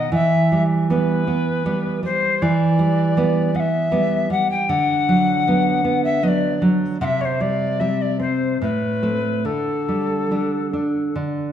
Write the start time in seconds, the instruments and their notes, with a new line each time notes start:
Already playing: nylon-string guitar D#3, recorder D#5
0.12 nylon-string guitar E3, recorder E5
0.52 nylon-string guitar G3
0.90 nylon-string guitar G3 B3, recorder B4
1.27 nylon-string guitar B3
1.65 nylon-string guitar G3 B3
2.03 nylon-string guitar G3, recorder C5
2.42 nylon-string guitar E3, recorder D5
2.79 nylon-string guitar G3
3.17 nylon-string guitar G3 B3
3.54 nylon-string guitar B3, recorder F#5
3.59 recorder E5
3.92 nylon-string guitar G3 B3
4.30 nylon-string guitar G3, recorder F#5
4.51 recorder G5
4.69 nylon-string guitar D3, recorder F#5
5.09 nylon-string guitar F#3
5.47 nylon-string guitar F#3 B3
5.84 nylon-string guitar B3
6.04 recorder E5
6.23 nylon-string guitar F#3 B3, recorder D#5
6.27 recorder D5
6.62 nylon-string guitar F#3
7.00 nylon-string guitar C3, recorder E5 F#5
7.20 recorder C#5
7.25 recorder C5
7.41 nylon-string guitar G3, recorder D5
7.79 nylon-string guitar G3 C4, recorder E5
8.01 recorder D5
8.19 nylon-string guitar C4, recorder C5
8.61 nylon-string guitar A2, recorder B4
9.03 nylon-string guitar A3 C4
9.45 nylon-string guitar D3, recorder A4
9.89 nylon-string guitar G3
10.31 nylon-string guitar G3 D4
10.73 nylon-string guitar D4
11.16 nylon-string guitar D3